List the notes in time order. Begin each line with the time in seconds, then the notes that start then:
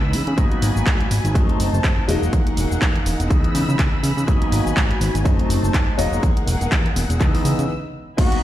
Already playing: C#2 E3 G#3 B3 D#4 B5 E6
0.13 C#3, open hi-hat
0.27 C#3, closed hi-hat
0.37 G#2 F#3 A#3 B3 D#4 F#4 G#5, kick, closed hi-hat, cabasa
0.52 closed hi-hat
0.62 G#1, open hi-hat, cabasa
0.76 G#1, cabasa
0.86 G#2, kick, clap, closed hi-hat, cabasa
1.00 closed hi-hat
1.11 G#1, open hi-hat, cabasa
1.25 G#1, closed hi-hat, cabasa
1.34 F#2 F#3 A3 C4 D#4 C5 A5, kick, closed hi-hat, cabasa
1.49 F#1, closed hi-hat
1.60 F#1, open hi-hat, cabasa
1.73 F#1, cabasa
1.84 F#2, kick, clap, closed hi-hat, cabasa
2.08 E1 F#3 G#3 A#3 D#4 G#4 A#4 F#5, open hi-hat, cabasa
2.22 E1, cabasa
2.33 E2, kick, closed hi-hat, cabasa
2.47 E1, closed hi-hat
2.57 E1, open hi-hat, cabasa
2.71 E1, cabasa
2.82 E2, kick, clap, closed hi-hat, cabasa
2.96 closed hi-hat
3.06 E1, open hi-hat, cabasa
3.20 E1, closed hi-hat, cabasa
3.30 C#2 E3 G#3 B3 D#4 B5 E6, kick, closed hi-hat, cabasa
3.44 C#3, closed hi-hat
3.55 C#3, open hi-hat, cabasa
3.68 C#3, cabasa
3.79 C#2, kick, clap, closed hi-hat, cabasa
4.03 C#3, open hi-hat, cabasa
4.17 C#3, cabasa
4.27 G#2 F#3 A#3 B3 D#4 F#4 G#5, kick, closed hi-hat, cabasa
4.42 closed hi-hat
4.52 G#1, open hi-hat, cabasa
4.66 G#1, cabasa
4.77 G#2, kick, clap, closed hi-hat, cabasa
4.91 closed hi-hat
5.01 G#1, open hi-hat, cabasa
5.15 G#1, closed hi-hat, cabasa
5.25 F#2 F#3 A3 C4 D#4 C5 A5, kick, closed hi-hat, cabasa
5.39 F#1, closed hi-hat
5.49 F#1, open hi-hat, cabasa
5.63 F#1, cabasa
5.74 F#2, kick, clap, closed hi-hat, cabasa
5.98 E1 F#3 G#3 A#3 D#4 G#4 A#4 F#5, open hi-hat, cabasa
6.12 E1, cabasa
6.23 E2, kick, closed hi-hat, cabasa
6.37 E1, closed hi-hat
6.47 E1, open hi-hat, cabasa
6.61 E1, closed hi-hat, cabasa
6.72 E2, kick, clap, closed hi-hat, cabasa
6.86 closed hi-hat
6.96 E1, open hi-hat, cabasa
7.10 E1, closed hi-hat, cabasa
7.20 C#2 E3 G#3 B3 D#4 B4 E6, kick, clap, closed hi-hat, cabasa
7.34 C#3, open hi-hat
7.45 C#3, open hi-hat, cabasa
7.59 C#3, closed hi-hat, cabasa
8.17 G#2 F#3 A#3 B3 D#4 F#4 G#5 B5, kick, closed hi-hat, crash, cabasa
8.32 closed hi-hat